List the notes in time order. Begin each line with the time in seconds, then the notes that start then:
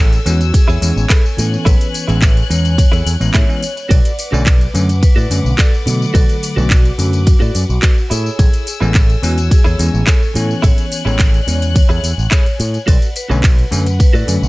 Already playing: A1 E4 G#4 A4 C#5 G#5 E6
0.13 closed hi-hat, tambourine
0.25 E2 E3 G#3 B3 C#4 F#4, open hi-hat, tambourine
0.41 closed hi-hat, tambourine
0.53 G#4, muted clean electric guitar stroke, kick, closed hi-hat, ride, tambourine
0.68 E2 E4 G#4 A4 C#5, tambourine
0.81 E2 E3 G#3 B3 C#4, open hi-hat, tambourine
0.97 A1, tambourine
1.09 E4 G#4 A4 B4, kick, clap, closed hi-hat, ride, tambourine
1.26 tambourine
1.37 A2 E3 B3 C#4 F#6, muted clean electric guitar stroke, open hi-hat, tambourine
1.54 tambourine
1.65 A1 E4 G#4 A4 B4 C#5, kick, closed hi-hat, ride, tambourine
1.81 closed hi-hat, tambourine
1.94 open hi-hat, tambourine
2.08 A1 E3 G#3 B3 C#4 E4 G#4 A4 C#5, closed hi-hat, tambourine
2.22 kick, clap, closed hi-hat, ride, tambourine
2.37 closed hi-hat, tambourine
2.50 E2 E3 G#3 B3 C#4 C#5, open hi-hat, tambourine
2.65 closed hi-hat, tambourine
2.77 muted clean electric guitar stroke, kick, closed hi-hat, ride, tambourine
2.92 E2 E4 G#4 A4 C#5, closed hi-hat, tambourine
3.06 E2, open hi-hat, tambourine
3.20 A1 E3 G#3 B3 C#4, closed hi-hat, tambourine
3.33 A2 E4 G#4 A4 C#5 E5, kick, clap, closed hi-hat, ride, tambourine
3.48 E3 G#3 B3 C#4, tambourine
3.61 muted clean electric guitar stroke, open hi-hat, tambourine
3.77 closed hi-hat, tambourine
3.89 B1 F#4 A4 B4 D5 F#5 D6, kick, closed hi-hat, ride, tambourine
4.05 closed hi-hat, tambourine
4.19 B4, open hi-hat, tambourine
4.32 B1 D3 F#3 A3 C#4 F#4 A4 B4 D5, tambourine
4.46 kick, clap, closed hi-hat, ride, tambourine
4.61 closed hi-hat, tambourine
4.74 F#2 D3 F#3 A3 C#4, open hi-hat, tambourine
4.89 closed hi-hat, tambourine
5.02 B4, muted clean electric guitar stroke, muted picked electric bass stroke, kick, closed hi-hat, ride, tambourine
5.16 A2 F#4 A4 B4 D5, tambourine
5.30 F#2 D3 F#3 A3 C#4, open hi-hat, tambourine
5.45 B1, tambourine
5.58 F#4 A4 B4 D5, kick, clap, closed hi-hat, ride, tambourine
5.74 tambourine
5.86 B2 D3 F#3 A3, muted clean electric guitar stroke, open hi-hat, tambourine
6.02 tambourine
6.14 B1 F#4 A4 B4 D5, kick, closed hi-hat, ride, tambourine
6.29 closed hi-hat, tambourine
6.43 open hi-hat, tambourine
6.56 B1 D3 F#3 A3 B3 F#4 A4 B4 D5, tambourine
6.70 kick, clap, closed hi-hat, ride, tambourine
6.85 closed hi-hat, tambourine
6.98 F#2 D3 F#3 A3 C#4 F#4, open hi-hat, tambourine
7.13 closed hi-hat, tambourine
7.26 muted clean electric guitar stroke, kick, closed hi-hat, ride, tambourine
7.40 A2 F#4 A4 B4 D5, tambourine
7.55 F#2, open hi-hat, tambourine
7.69 B1, tambourine
7.82 F#4 A4 B4 D5, kick, clap, closed hi-hat, ride, tambourine
7.98 tambourine
8.10 A2 E4 G#4 A4 C#5 G#5 E6, open hi-hat, tambourine
8.26 tambourine
8.39 A1 G#4, kick, closed hi-hat, ride, tambourine
8.53 closed hi-hat, tambourine
8.67 open hi-hat, tambourine
8.80 A1 E3 G#3 B3 C#4 E4 G#4 A4 C#5, tambourine
8.95 kick, clap, closed hi-hat, ride, tambourine
9.10 closed hi-hat, tambourine
9.22 E2 E3 G#3 B3 C#4 F#4, open hi-hat, tambourine
9.38 closed hi-hat, tambourine
9.50 G#4, muted clean electric guitar stroke, muted picked electric bass stroke, kick, closed hi-hat, ride, tambourine
9.64 E2 E4 G#4 A4 C#5, tambourine
9.79 E2 E3 G#3 B3 C#4, open hi-hat, tambourine
9.94 A1, tambourine
10.06 E4 G#4 A4 C#5, kick, clap, closed hi-hat, ride, tambourine
10.23 tambourine
10.34 A2 E3 B3 C#4 F#6, muted clean electric guitar stroke, open hi-hat, tambourine
10.51 tambourine
10.62 A1 E4 G#4 A4 C#5, kick, closed hi-hat, ride, tambourine
10.78 closed hi-hat, tambourine
10.92 open hi-hat, tambourine
11.05 A1 E3 G#3 B3 C#4 E4 G#4 A4 C#5, tambourine
11.19 kick, clap, closed hi-hat, ride, tambourine
11.34 closed hi-hat, tambourine
11.40 D5
11.47 E2 E3 G#3 B3 C#4 C#5, open hi-hat, tambourine
11.62 closed hi-hat, tambourine
11.74 muted clean electric guitar stroke, kick, closed hi-hat, ride, tambourine
11.89 E2 E4 G#4 A4 C#5, tambourine
12.04 E2, open hi-hat, tambourine
12.18 A1, tambourine
12.31 E4 G#4 A4 C#5, kick, clap, closed hi-hat, ride, tambourine
12.46 closed hi-hat, tambourine
12.59 A2, muted clean electric guitar stroke, open hi-hat, tambourine
12.74 closed hi-hat, tambourine
12.87 B1 F#4 A4 B4 D5 F#5, kick, closed hi-hat, ride, tambourine
13.02 closed hi-hat, tambourine
13.16 B4, open hi-hat, tambourine
13.29 B1 D3 F#3 A3 C#4 F#4 A4 B4 C#5, tambourine
13.44 kick, clap, closed hi-hat, ride, tambourine
13.58 closed hi-hat, tambourine
13.71 F#2 D3 F#3 A3 C#4, open hi-hat, tambourine
13.86 closed hi-hat, tambourine
13.99 B4, muted clean electric guitar stroke, muted picked electric bass stroke, kick, closed hi-hat, ride, tambourine
14.13 A2 F#4 A4 B4 D5, tambourine
14.27 F#2 D3 F#3 A3 C#4, open hi-hat, tambourine
14.42 B1, tambourine